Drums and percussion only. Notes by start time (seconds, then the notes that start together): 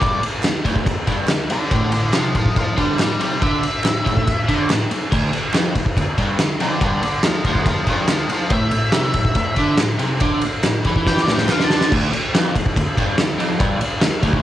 0.02 kick, ride
0.23 ride
0.43 snare, clap, ride
0.65 kick, ride
0.76 kick
0.86 kick, ride
1.07 kick, ride
1.28 snare, clap, ride
1.50 ride
1.71 kick, ride
1.92 ride
2.13 snare, clap, ride
2.35 kick, ride
2.46 kick
2.56 kick, ride
2.78 kick, ride
2.99 snare, clap, ride
3.21 ride
3.42 kick, ride
3.63 ride
3.84 snare, clap, ride
4.06 kick, ride
4.17 kick
4.27 kick, ride
4.48 kick, ride
4.70 snare, clap, ride
4.91 ride
5.12 kick, crash
5.33 ride
5.54 snare, clap, ride
5.76 kick, ride
5.86 kick
5.97 kick, ride
6.18 kick, ride
6.39 snare, clap, ride
6.60 ride
6.81 kick, ride
7.03 ride
7.23 snare, clap, ride
7.45 kick, ride
7.55 kick
7.66 kick, ride
7.87 kick, ride
8.08 snare, clap, ride
8.30 ride
8.50 kick, ride
8.71 ride
8.92 snare, clap, ride
9.14 kick, ride
9.25 kick
9.35 kick, ride
9.56 kick, ride
9.77 snare, clap, ride
9.99 ride
10.20 kick, ride
10.41 ride
10.63 snare, clap, ride
10.84 kick, ride
10.96 kick
11.07 kick, snare
11.17 snare
11.28 snare
11.38 snare
11.48 snare, clap
11.60 snare
11.70 snare
11.81 snare
11.92 kick, crash
12.13 ride
12.35 snare, ride
12.55 kick, ride
12.66 kick
12.76 kick, ride
12.97 kick, ride
13.18 snare, ride
13.40 ride
13.60 kick, ride
13.81 ride
14.01 snare, ride
14.23 kick, ride
14.33 kick